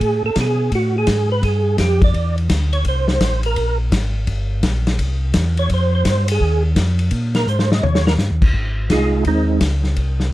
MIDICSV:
0, 0, Header, 1, 4, 480
1, 0, Start_track
1, 0, Key_signature, -4, "major"
1, 0, Tempo, 355450
1, 19, Time_signature, 4, 2, 24, 8
1, 13951, End_track
2, 0, Start_track
2, 0, Title_t, "Tonewheel organ"
2, 0, Program_c, 0, 16
2, 0, Note_on_c, 0, 68, 101
2, 310, Note_off_c, 0, 68, 0
2, 349, Note_on_c, 0, 69, 107
2, 503, Note_off_c, 0, 69, 0
2, 549, Note_on_c, 0, 68, 83
2, 971, Note_off_c, 0, 68, 0
2, 1014, Note_on_c, 0, 66, 88
2, 1299, Note_off_c, 0, 66, 0
2, 1324, Note_on_c, 0, 68, 94
2, 1753, Note_off_c, 0, 68, 0
2, 1780, Note_on_c, 0, 71, 106
2, 1937, Note_off_c, 0, 71, 0
2, 1949, Note_on_c, 0, 68, 85
2, 2389, Note_off_c, 0, 68, 0
2, 2425, Note_on_c, 0, 67, 84
2, 2722, Note_off_c, 0, 67, 0
2, 2756, Note_on_c, 0, 74, 101
2, 3188, Note_off_c, 0, 74, 0
2, 3684, Note_on_c, 0, 73, 95
2, 3847, Note_off_c, 0, 73, 0
2, 3896, Note_on_c, 0, 72, 90
2, 4149, Note_off_c, 0, 72, 0
2, 4165, Note_on_c, 0, 72, 89
2, 4610, Note_off_c, 0, 72, 0
2, 4674, Note_on_c, 0, 70, 105
2, 5106, Note_off_c, 0, 70, 0
2, 7548, Note_on_c, 0, 73, 113
2, 7699, Note_off_c, 0, 73, 0
2, 7745, Note_on_c, 0, 72, 87
2, 8019, Note_off_c, 0, 72, 0
2, 8035, Note_on_c, 0, 72, 99
2, 8467, Note_off_c, 0, 72, 0
2, 8526, Note_on_c, 0, 68, 91
2, 8953, Note_off_c, 0, 68, 0
2, 9937, Note_on_c, 0, 70, 98
2, 10095, Note_off_c, 0, 70, 0
2, 10108, Note_on_c, 0, 72, 96
2, 10405, Note_off_c, 0, 72, 0
2, 10428, Note_on_c, 0, 75, 123
2, 10573, Note_on_c, 0, 73, 99
2, 10581, Note_off_c, 0, 75, 0
2, 10877, Note_off_c, 0, 73, 0
2, 10897, Note_on_c, 0, 70, 100
2, 10995, Note_off_c, 0, 70, 0
2, 12035, Note_on_c, 0, 68, 73
2, 12048, Note_on_c, 0, 65, 65
2, 12049, Note_on_c, 0, 56, 59
2, 12053, Note_on_c, 0, 63, 58
2, 12474, Note_off_c, 0, 68, 0
2, 12481, Note_off_c, 0, 65, 0
2, 12482, Note_off_c, 0, 56, 0
2, 12484, Note_off_c, 0, 63, 0
2, 12525, Note_on_c, 0, 63, 58
2, 12526, Note_on_c, 0, 51, 48
2, 12530, Note_on_c, 0, 56, 52
2, 12532, Note_on_c, 0, 60, 46
2, 12960, Note_off_c, 0, 63, 0
2, 12961, Note_off_c, 0, 51, 0
2, 12963, Note_off_c, 0, 56, 0
2, 12964, Note_off_c, 0, 60, 0
2, 13951, End_track
3, 0, Start_track
3, 0, Title_t, "Tonewheel organ"
3, 0, Program_c, 1, 16
3, 8, Note_on_c, 1, 45, 88
3, 303, Note_off_c, 1, 45, 0
3, 328, Note_on_c, 1, 45, 38
3, 413, Note_off_c, 1, 45, 0
3, 485, Note_on_c, 1, 47, 96
3, 956, Note_off_c, 1, 47, 0
3, 966, Note_on_c, 1, 45, 80
3, 1436, Note_off_c, 1, 45, 0
3, 1447, Note_on_c, 1, 44, 90
3, 1916, Note_off_c, 1, 44, 0
3, 1925, Note_on_c, 1, 43, 91
3, 2395, Note_off_c, 1, 43, 0
3, 2411, Note_on_c, 1, 41, 84
3, 2878, Note_off_c, 1, 41, 0
3, 2889, Note_on_c, 1, 40, 80
3, 3356, Note_off_c, 1, 40, 0
3, 3366, Note_on_c, 1, 38, 99
3, 3835, Note_off_c, 1, 38, 0
3, 3847, Note_on_c, 1, 36, 81
3, 4315, Note_off_c, 1, 36, 0
3, 4329, Note_on_c, 1, 33, 89
3, 4795, Note_off_c, 1, 33, 0
3, 4811, Note_on_c, 1, 34, 81
3, 5277, Note_off_c, 1, 34, 0
3, 5291, Note_on_c, 1, 32, 93
3, 5757, Note_off_c, 1, 32, 0
3, 5766, Note_on_c, 1, 31, 81
3, 6234, Note_off_c, 1, 31, 0
3, 6254, Note_on_c, 1, 34, 94
3, 6718, Note_off_c, 1, 34, 0
3, 6735, Note_on_c, 1, 36, 80
3, 7199, Note_off_c, 1, 36, 0
3, 7211, Note_on_c, 1, 40, 101
3, 7677, Note_off_c, 1, 40, 0
3, 7689, Note_on_c, 1, 41, 89
3, 8156, Note_off_c, 1, 41, 0
3, 8169, Note_on_c, 1, 43, 93
3, 8636, Note_off_c, 1, 43, 0
3, 8652, Note_on_c, 1, 39, 89
3, 9119, Note_off_c, 1, 39, 0
3, 9127, Note_on_c, 1, 41, 99
3, 9596, Note_off_c, 1, 41, 0
3, 9606, Note_on_c, 1, 46, 87
3, 10076, Note_off_c, 1, 46, 0
3, 10084, Note_on_c, 1, 44, 92
3, 10555, Note_off_c, 1, 44, 0
3, 10570, Note_on_c, 1, 39, 84
3, 11039, Note_off_c, 1, 39, 0
3, 11053, Note_on_c, 1, 43, 104
3, 11210, Note_off_c, 1, 43, 0
3, 11215, Note_on_c, 1, 39, 70
3, 11376, Note_off_c, 1, 39, 0
3, 11376, Note_on_c, 1, 37, 78
3, 11526, Note_off_c, 1, 37, 0
3, 11534, Note_on_c, 1, 32, 82
3, 12002, Note_off_c, 1, 32, 0
3, 12008, Note_on_c, 1, 36, 85
3, 12480, Note_off_c, 1, 36, 0
3, 12492, Note_on_c, 1, 39, 79
3, 12962, Note_off_c, 1, 39, 0
3, 12976, Note_on_c, 1, 37, 94
3, 13445, Note_off_c, 1, 37, 0
3, 13454, Note_on_c, 1, 36, 82
3, 13924, Note_off_c, 1, 36, 0
3, 13951, End_track
4, 0, Start_track
4, 0, Title_t, "Drums"
4, 9, Note_on_c, 9, 36, 19
4, 14, Note_on_c, 9, 51, 55
4, 144, Note_off_c, 9, 36, 0
4, 149, Note_off_c, 9, 51, 0
4, 481, Note_on_c, 9, 44, 59
4, 481, Note_on_c, 9, 51, 76
4, 484, Note_on_c, 9, 38, 65
4, 487, Note_on_c, 9, 36, 19
4, 616, Note_off_c, 9, 44, 0
4, 616, Note_off_c, 9, 51, 0
4, 619, Note_off_c, 9, 38, 0
4, 623, Note_off_c, 9, 36, 0
4, 966, Note_on_c, 9, 36, 18
4, 969, Note_on_c, 9, 51, 64
4, 1101, Note_off_c, 9, 36, 0
4, 1104, Note_off_c, 9, 51, 0
4, 1442, Note_on_c, 9, 44, 62
4, 1442, Note_on_c, 9, 51, 77
4, 1445, Note_on_c, 9, 38, 75
4, 1447, Note_on_c, 9, 36, 21
4, 1577, Note_off_c, 9, 44, 0
4, 1577, Note_off_c, 9, 51, 0
4, 1580, Note_off_c, 9, 38, 0
4, 1582, Note_off_c, 9, 36, 0
4, 1929, Note_on_c, 9, 36, 25
4, 1929, Note_on_c, 9, 51, 59
4, 2064, Note_off_c, 9, 36, 0
4, 2064, Note_off_c, 9, 51, 0
4, 2405, Note_on_c, 9, 44, 61
4, 2405, Note_on_c, 9, 51, 70
4, 2408, Note_on_c, 9, 38, 70
4, 2409, Note_on_c, 9, 36, 19
4, 2541, Note_off_c, 9, 44, 0
4, 2541, Note_off_c, 9, 51, 0
4, 2543, Note_off_c, 9, 38, 0
4, 2544, Note_off_c, 9, 36, 0
4, 2724, Note_on_c, 9, 36, 78
4, 2726, Note_on_c, 9, 51, 58
4, 2859, Note_off_c, 9, 36, 0
4, 2861, Note_off_c, 9, 51, 0
4, 2890, Note_on_c, 9, 36, 21
4, 2894, Note_on_c, 9, 51, 54
4, 3025, Note_off_c, 9, 36, 0
4, 3029, Note_off_c, 9, 51, 0
4, 3210, Note_on_c, 9, 51, 45
4, 3345, Note_off_c, 9, 51, 0
4, 3370, Note_on_c, 9, 36, 24
4, 3370, Note_on_c, 9, 44, 63
4, 3370, Note_on_c, 9, 51, 84
4, 3373, Note_on_c, 9, 38, 80
4, 3505, Note_off_c, 9, 44, 0
4, 3505, Note_off_c, 9, 51, 0
4, 3506, Note_off_c, 9, 36, 0
4, 3508, Note_off_c, 9, 38, 0
4, 3685, Note_on_c, 9, 51, 50
4, 3820, Note_off_c, 9, 51, 0
4, 3844, Note_on_c, 9, 51, 64
4, 3849, Note_on_c, 9, 36, 24
4, 3979, Note_off_c, 9, 51, 0
4, 3984, Note_off_c, 9, 36, 0
4, 4158, Note_on_c, 9, 38, 62
4, 4293, Note_off_c, 9, 38, 0
4, 4329, Note_on_c, 9, 36, 19
4, 4329, Note_on_c, 9, 44, 65
4, 4329, Note_on_c, 9, 51, 77
4, 4332, Note_on_c, 9, 38, 80
4, 4464, Note_off_c, 9, 36, 0
4, 4464, Note_off_c, 9, 44, 0
4, 4464, Note_off_c, 9, 51, 0
4, 4467, Note_off_c, 9, 38, 0
4, 4633, Note_on_c, 9, 51, 57
4, 4768, Note_off_c, 9, 51, 0
4, 4810, Note_on_c, 9, 51, 64
4, 4811, Note_on_c, 9, 36, 19
4, 4945, Note_off_c, 9, 51, 0
4, 4946, Note_off_c, 9, 36, 0
4, 5292, Note_on_c, 9, 36, 26
4, 5294, Note_on_c, 9, 44, 68
4, 5294, Note_on_c, 9, 51, 80
4, 5296, Note_on_c, 9, 38, 81
4, 5427, Note_off_c, 9, 36, 0
4, 5429, Note_off_c, 9, 44, 0
4, 5429, Note_off_c, 9, 51, 0
4, 5431, Note_off_c, 9, 38, 0
4, 5768, Note_on_c, 9, 51, 59
4, 5772, Note_on_c, 9, 36, 28
4, 5903, Note_off_c, 9, 51, 0
4, 5907, Note_off_c, 9, 36, 0
4, 6250, Note_on_c, 9, 44, 51
4, 6250, Note_on_c, 9, 51, 76
4, 6253, Note_on_c, 9, 38, 81
4, 6254, Note_on_c, 9, 36, 28
4, 6385, Note_off_c, 9, 44, 0
4, 6385, Note_off_c, 9, 51, 0
4, 6388, Note_off_c, 9, 38, 0
4, 6389, Note_off_c, 9, 36, 0
4, 6573, Note_on_c, 9, 51, 52
4, 6576, Note_on_c, 9, 38, 66
4, 6709, Note_off_c, 9, 51, 0
4, 6711, Note_off_c, 9, 38, 0
4, 6735, Note_on_c, 9, 36, 25
4, 6736, Note_on_c, 9, 51, 68
4, 6870, Note_off_c, 9, 36, 0
4, 6871, Note_off_c, 9, 51, 0
4, 7205, Note_on_c, 9, 44, 67
4, 7205, Note_on_c, 9, 51, 81
4, 7208, Note_on_c, 9, 38, 81
4, 7214, Note_on_c, 9, 36, 25
4, 7340, Note_off_c, 9, 44, 0
4, 7340, Note_off_c, 9, 51, 0
4, 7343, Note_off_c, 9, 38, 0
4, 7349, Note_off_c, 9, 36, 0
4, 7525, Note_on_c, 9, 51, 52
4, 7660, Note_off_c, 9, 51, 0
4, 7691, Note_on_c, 9, 51, 67
4, 7693, Note_on_c, 9, 36, 27
4, 7826, Note_off_c, 9, 51, 0
4, 7828, Note_off_c, 9, 36, 0
4, 8170, Note_on_c, 9, 44, 65
4, 8170, Note_on_c, 9, 51, 81
4, 8172, Note_on_c, 9, 36, 21
4, 8172, Note_on_c, 9, 38, 73
4, 8305, Note_off_c, 9, 44, 0
4, 8305, Note_off_c, 9, 51, 0
4, 8307, Note_off_c, 9, 36, 0
4, 8307, Note_off_c, 9, 38, 0
4, 8479, Note_on_c, 9, 51, 84
4, 8614, Note_off_c, 9, 51, 0
4, 8652, Note_on_c, 9, 36, 27
4, 8787, Note_off_c, 9, 36, 0
4, 9130, Note_on_c, 9, 44, 63
4, 9130, Note_on_c, 9, 51, 75
4, 9132, Note_on_c, 9, 36, 24
4, 9133, Note_on_c, 9, 38, 88
4, 9265, Note_off_c, 9, 44, 0
4, 9265, Note_off_c, 9, 51, 0
4, 9267, Note_off_c, 9, 36, 0
4, 9268, Note_off_c, 9, 38, 0
4, 9436, Note_on_c, 9, 51, 51
4, 9571, Note_off_c, 9, 51, 0
4, 9598, Note_on_c, 9, 51, 71
4, 9607, Note_on_c, 9, 36, 20
4, 9733, Note_off_c, 9, 51, 0
4, 9742, Note_off_c, 9, 36, 0
4, 9920, Note_on_c, 9, 51, 58
4, 9922, Note_on_c, 9, 38, 65
4, 10055, Note_off_c, 9, 51, 0
4, 10058, Note_off_c, 9, 38, 0
4, 10093, Note_on_c, 9, 44, 71
4, 10228, Note_off_c, 9, 44, 0
4, 10250, Note_on_c, 9, 38, 62
4, 10385, Note_off_c, 9, 38, 0
4, 10422, Note_on_c, 9, 38, 84
4, 10557, Note_off_c, 9, 38, 0
4, 10580, Note_on_c, 9, 43, 71
4, 10715, Note_off_c, 9, 43, 0
4, 10738, Note_on_c, 9, 38, 84
4, 10873, Note_off_c, 9, 38, 0
4, 10901, Note_on_c, 9, 38, 108
4, 11036, Note_off_c, 9, 38, 0
4, 11050, Note_on_c, 9, 44, 67
4, 11053, Note_on_c, 9, 38, 69
4, 11185, Note_off_c, 9, 44, 0
4, 11188, Note_off_c, 9, 38, 0
4, 11368, Note_on_c, 9, 49, 77
4, 11369, Note_on_c, 9, 36, 78
4, 11503, Note_off_c, 9, 49, 0
4, 11504, Note_off_c, 9, 36, 0
4, 11538, Note_on_c, 9, 36, 24
4, 11673, Note_off_c, 9, 36, 0
4, 12015, Note_on_c, 9, 36, 23
4, 12015, Note_on_c, 9, 44, 53
4, 12015, Note_on_c, 9, 51, 72
4, 12018, Note_on_c, 9, 38, 76
4, 12150, Note_off_c, 9, 36, 0
4, 12151, Note_off_c, 9, 44, 0
4, 12151, Note_off_c, 9, 51, 0
4, 12153, Note_off_c, 9, 38, 0
4, 12486, Note_on_c, 9, 51, 56
4, 12493, Note_on_c, 9, 36, 20
4, 12621, Note_off_c, 9, 51, 0
4, 12628, Note_off_c, 9, 36, 0
4, 12973, Note_on_c, 9, 44, 56
4, 12973, Note_on_c, 9, 51, 80
4, 12976, Note_on_c, 9, 36, 25
4, 12976, Note_on_c, 9, 38, 79
4, 13108, Note_off_c, 9, 44, 0
4, 13108, Note_off_c, 9, 51, 0
4, 13111, Note_off_c, 9, 36, 0
4, 13111, Note_off_c, 9, 38, 0
4, 13284, Note_on_c, 9, 38, 44
4, 13419, Note_off_c, 9, 38, 0
4, 13456, Note_on_c, 9, 51, 56
4, 13458, Note_on_c, 9, 36, 21
4, 13591, Note_off_c, 9, 51, 0
4, 13593, Note_off_c, 9, 36, 0
4, 13771, Note_on_c, 9, 38, 43
4, 13906, Note_off_c, 9, 38, 0
4, 13951, End_track
0, 0, End_of_file